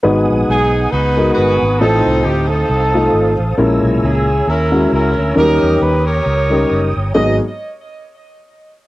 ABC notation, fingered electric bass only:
X:1
M:4/4
L:1/8
Q:"Swing" 1/4=135
K:G#m
V:1 name="Fingered electric bass" clef=bass
G,,, A,,, B,,,2 C,,2 =G,,, ^G,,, | =A,,, =C,, =D,,2 C,,2 G,,, A,,, | A,,, B,,, C,,2 D,,2 C,, =D,, | D,, E,, D,,2 C,,2 F,,, =G,,, |
G,,, z6 z |]